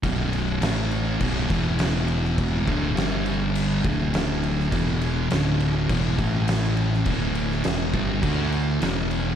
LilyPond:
<<
  \new Staff \with { instrumentName = "Distorted electric guitar" } { \clef bass \time 4/4 \key e \dorian \tempo 4 = 103 <b,, fis, b,>4 <a, e a>4 <b,, fis, b,>8 <e, b, e>4.~ | <e, b, e>8 <d, a, d>8 <g, d g>4. <d, a, d>4. | <e, b, e>4 <d, a, d>4 <e, b, e>8 <a, e a>4. | <d, a, d>4 <e, b, e>8 <g, d g>8 <d a d'>4 <e, b, e>4 | }
  \new Staff \with { instrumentName = "Distorted electric guitar" } { \clef bass \time 4/4 \key e \dorian <b,, fis, b,>4 <a, e a>4 <b,, fis, b,>8 <e, b, e>4.~ | <e, b, e>8 <d, a, d>8 <g, d g>4. <d, a, d>4. | <e, b, e>4 <d, a, d>4 <e, b, e>8 <a, e a>4. | <d, a, d>4 <e, b, e>8 <g, d g>8 <d a d'>4 <e, b, e>4 | }
  \new Staff \with { instrumentName = "Picked electric bass" } { \clef bass \time 4/4 \key e \dorian b,,,4 a,,4 b,,,8 e,,4.~ | e,,8 d,,8 g,,4. d,,4. | e,,4 d,,4 e,,8 a,,4. | d,,4 e,,8 g,,8 d,4 e,,4 | }
  \new DrumStaff \with { instrumentName = "Drums" } \drummode { \time 4/4 <cymc bd>8 cymc8 <cymc sn>8 cymc8 <cymc bd>8 <cymc bd>8 <cymc sn>8 cymc16 sn16 | <cymc bd>8 <cymc bd>8 <cymc sn>8 cymc8 cymc8 <cymc bd>8 <cymc sn>8 cymc16 sn16 | <cymc bd>8 cymc8 <cymc sn>8 cymc8 <cymc bd>8 <cymc bd>8 <cymc sn>8 cymc16 sn16 | <cymc bd>8 cymc16 sn16 <cymc sn>8 <cymc bd>8 <cymc bd>8 cymc8 <cymc sn>8 cymc8 | }
>>